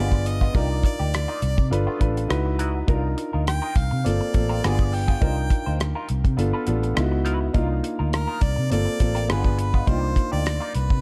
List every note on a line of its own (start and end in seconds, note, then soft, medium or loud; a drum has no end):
0.00 0.47 G1 medium
0.00 0.15 G#3 medium
0.00 0.16 B3 medium
0.00 0.49 B3 medium
0.00 0.49 D4 medium
0.00 0.16 F4 medium
0.00 0.49 F4 medium
0.00 0.50 G#4 medium
0.00 0.28 D5 loud
0.12 kick medium
0.26 0.58 D#5 medium
0.26 muted clean electric guitar stroke soft
0.26 closed hi-hat medium
0.41 0.54 G#3 soft
0.41 0.55 B3 soft
0.41 0.55 F4 medium
0.41 kick medium
0.41 cross-stick soft
0.53 0.80 C2 medium
0.53 0.74 A#3 medium
0.53 1.60 D4 medium
0.53 1.60 D#4 medium
0.53 0.70 D#4 medium
0.53 1.61 F4 medium
0.53 0.70 G4 medium
0.53 1.61 A#4 medium
0.53 0.85 D5 medium
0.53 kick loud
0.53 closed hi-hat medium
0.70 muted clean electric guitar stroke soft
0.84 1.68 D5 medium
0.84 muted clean electric guitar stroke soft
0.84 kick medium
0.84 closed hi-hat medium
0.99 1.25 D2 medium
0.99 1.12 A#3 soft
0.99 1.12 D#4 soft
0.99 1.13 G4 soft
1.13 muted clean electric guitar stroke soft
1.13 cross-stick medium
1.13 closed hi-hat medium
1.28 1.40 A#3 medium
1.28 1.41 D#4 medium
1.28 1.41 F4 medium
1.41 1.56 C2 medium
1.41 muted clean electric guitar stroke soft
1.41 closed hi-hat medium
1.57 1.70 C3 medium
1.57 muted clean electric guitar stroke soft
1.57 kick medium
1.70 1.85 G1 medium
1.70 1.97 D4 medium
1.70 1.98 F4 medium
1.70 1.98 A4 medium
1.70 1.98 B4 medium
1.70 muted clean electric guitar stroke soft
1.70 closed hi-hat medium
1.87 1.99 A3 medium
1.87 2.00 B3 medium
1.87 2.00 F4 medium
1.99 2.26 A1 medium
1.99 2.29 D4 medium
1.99 2.29 F4 medium
1.99 2.30 A4 medium
1.99 2.29 B4 medium
1.99 muted clean electric guitar stroke soft
1.99 kick medium
1.99 closed hi-hat medium
2.17 muted clean electric guitar stroke soft
2.17 closed hi-hat soft
2.28 2.81 C#2 medium
2.28 2.82 D#4 medium
2.28 2.83 E4 medium
2.28 2.83 F#4 medium
2.28 2.83 B4 medium
2.28 2.57 D#5 medium
2.28 muted clean electric guitar stroke soft
2.28 cross-stick loud
2.28 closed hi-hat medium
2.46 muted clean electric guitar stroke soft
2.59 2.78 B3 medium
2.59 2.75 E4 medium
2.59 2.74 F#4 medium
2.59 2.86 A#5 medium
2.59 closed hi-hat medium
2.75 muted clean electric guitar stroke soft
2.87 3.14 C2 medium
2.87 3.94 D4 medium
2.87 3.94 D#4 medium
2.87 3.07 D#4 medium
2.87 3.94 F4 medium
2.87 3.04 F4 medium
2.87 3.03 A#4 medium
2.87 3.95 A#4 medium
2.87 kick loud
2.87 closed hi-hat medium
3.04 muted clean electric guitar stroke soft
3.18 muted clean electric guitar stroke soft
3.18 closed hi-hat medium
3.33 3.59 D2 medium
3.33 3.45 D#4 soft
3.33 3.46 F4 soft
3.33 3.46 A#4 soft
3.47 3.78 G5 medium
3.47 cross-stick medium
3.47 closed hi-hat medium
3.62 3.74 D#4 soft
3.62 3.75 F4 medium
3.62 3.75 A#4 medium
3.76 3.90 C2 medium
3.76 4.08 F5 medium
3.76 muted clean electric guitar stroke soft
3.76 kick medium
3.76 closed hi-hat medium
3.91 4.04 C3 medium
3.91 muted clean electric guitar stroke soft
4.04 4.19 G1 medium
4.04 4.31 A#3 medium
4.04 4.31 C4 medium
4.04 4.32 F4 medium
4.04 4.32 A4 medium
4.04 4.96 D5 medium
4.04 muted clean electric guitar stroke soft
4.04 closed hi-hat medium
4.21 muted clean electric guitar stroke soft
4.21 muted fingered electric bass stroke soft
4.33 4.60 A1 medium
4.33 4.63 A#3 medium
4.33 4.63 C4 medium
4.33 4.62 F4 medium
4.33 4.64 A4 medium
4.33 kick medium
4.33 closed hi-hat medium
4.49 4.62 C4 soft
4.49 4.63 F4 medium
4.49 4.64 A#4 medium
4.63 5.15 G1 medium
4.63 5.16 B3 medium
4.63 4.82 B3 medium
4.63 5.16 D4 medium
4.63 5.17 F4 medium
4.63 4.83 F4 medium
4.63 4.83 G#4 medium
4.63 5.17 G#4 medium
4.63 cross-stick loud
4.63 closed hi-hat medium
4.79 kick medium
4.92 5.81 G5 medium
4.92 muted clean electric guitar stroke soft
4.92 open hi-hat soft
5.08 5.21 B3 soft
5.08 5.20 F4 soft
5.08 5.21 G#4 medium
5.08 kick medium
5.08 cross-stick soft
5.21 5.47 C2 medium
5.21 6.27 D4 medium
5.21 5.40 D#4 medium
5.21 6.27 D#4 medium
5.21 5.37 F4 medium
5.21 6.28 F4 medium
5.21 6.28 A#4 medium
5.21 5.37 C5 medium
5.21 kick loud
5.21 closed hi-hat medium
5.37 muted clean electric guitar stroke soft
5.50 muted clean electric guitar stroke soft
5.50 kick medium
5.50 closed hi-hat medium
5.66 5.92 D2 medium
5.66 5.78 D#4 soft
5.66 5.79 F4 soft
5.66 5.79 C5 soft
5.80 cross-stick loud
5.80 closed hi-hat medium
5.95 6.07 D#4 soft
5.95 6.08 F4 medium
5.95 6.08 A#4 medium
6.09 6.23 C2 medium
6.09 muted clean electric guitar stroke soft
6.09 closed hi-hat medium
6.24 6.36 C3 medium
6.24 muted clean electric guitar stroke soft
6.24 kick medium
6.24 closed hi-hat soft
6.37 6.52 G1 medium
6.37 6.64 B3 medium
6.37 6.64 D4 medium
6.37 6.65 F4 medium
6.37 6.65 A4 medium
6.37 muted clean electric guitar stroke soft
6.37 closed hi-hat medium
6.53 6.66 F4 medium
6.53 6.66 A4 medium
6.53 6.66 B4 medium
6.53 muted fingered electric bass stroke soft
6.66 6.93 A1 medium
6.66 6.94 B3 medium
6.66 6.96 D4 medium
6.66 6.96 F4 medium
6.66 6.97 A4 medium
6.66 closed hi-hat medium
6.83 muted clean electric guitar stroke soft
6.83 closed hi-hat soft
6.95 7.48 C#2 medium
6.95 7.49 B3 medium
6.95 7.49 D#4 medium
6.95 7.49 E4 medium
6.95 7.04 F4 medium
6.95 muted clean electric guitar stroke soft
6.95 cross-stick loud
6.95 closed hi-hat medium
7.04 7.53 F#4 medium
7.12 muted clean electric guitar stroke soft
7.25 7.46 E4 medium
7.25 7.40 F#4 medium
7.25 7.40 B4 medium
7.25 closed hi-hat medium
7.41 muted clean electric guitar stroke soft
7.53 7.80 C2 medium
7.53 8.60 A#3 medium
7.53 8.60 D4 medium
7.53 7.73 D#4 medium
7.53 8.61 D#4 medium
7.53 7.69 F4 medium
7.53 8.61 F4 medium
7.53 7.68 A#4 medium
7.53 kick loud
7.53 closed hi-hat medium
7.69 muted clean electric guitar stroke soft
7.84 muted clean electric guitar stroke soft
7.84 closed hi-hat medium
7.99 8.25 D2 medium
7.99 8.11 D#4 soft
7.99 8.12 F4 soft
7.99 8.12 A#4 soft
8.12 8.44 A#4 medium
8.12 muted clean electric guitar stroke soft
8.12 cross-stick medium
8.12 closed hi-hat medium
8.27 8.40 D#4 soft
8.27 8.40 F4 medium
8.27 8.41 A#4 medium
8.41 8.56 C2 medium
8.41 8.71 D5 medium
8.41 kick medium
8.41 closed hi-hat medium
8.56 8.70 C3 medium
8.56 muted clean electric guitar stroke soft
8.70 8.85 G1 loud
8.70 8.97 A#3 medium
8.70 8.97 C4 medium
8.70 8.98 F4 medium
8.70 8.98 A4 medium
8.70 9.26 D5 loud
8.70 muted clean electric guitar stroke soft
8.70 closed hi-hat medium
8.85 muted clean electric guitar stroke soft
8.85 muted fingered electric bass stroke soft
8.99 9.31 A1 medium
8.99 9.29 A#3 medium
8.99 9.29 C4 medium
8.99 9.28 F4 medium
8.99 9.30 A4 medium
8.99 kick medium
8.99 closed hi-hat medium
9.15 9.29 C4 medium
9.15 9.29 F4 medium
9.15 9.33 A#4 medium
9.15 closed hi-hat soft
9.28 9.81 G1 medium
9.28 9.48 G#3 medium
9.28 9.82 B3 medium
9.28 9.48 B3 medium
9.28 9.82 D4 medium
9.28 9.49 F4 medium
9.28 9.83 F4 medium
9.28 9.83 G#4 medium
9.28 9.57 B4 medium
9.28 cross-stick loud
9.28 closed hi-hat medium
9.44 kick medium
9.58 9.89 B4 medium
9.58 muted clean electric guitar stroke soft
9.58 closed hi-hat medium
9.74 9.86 G#3 soft
9.74 9.87 B3 medium
9.74 9.87 F4 medium
9.74 kick medium
9.86 10.13 C2 medium
9.86 10.06 A#3 medium
9.86 10.93 A#3 medium
9.86 10.93 D4 medium
9.86 10.02 D#4 medium
9.86 10.94 D#4 medium
9.86 10.94 F4 medium
9.86 10.02 G4 medium
9.86 10.32 C5 medium
9.86 kick loud
9.86 closed hi-hat medium
10.02 muted clean electric guitar stroke soft
10.16 muted clean electric guitar stroke soft
10.16 kick medium
10.16 closed hi-hat medium
10.32 10.58 D2 medium
10.32 10.44 A#3 soft
10.32 10.45 D#4 soft
10.32 10.45 G4 soft
10.32 10.72 D5 medium
10.46 cross-stick loud
10.46 closed hi-hat medium
10.60 10.73 A#3 medium
10.60 10.74 D#4 medium
10.60 10.74 F4 medium
10.74 10.89 C2 medium
10.74 11.01 B4 medium
10.74 closed hi-hat medium
10.90 11.01 C3 medium
10.90 muted clean electric guitar stroke soft
10.90 kick medium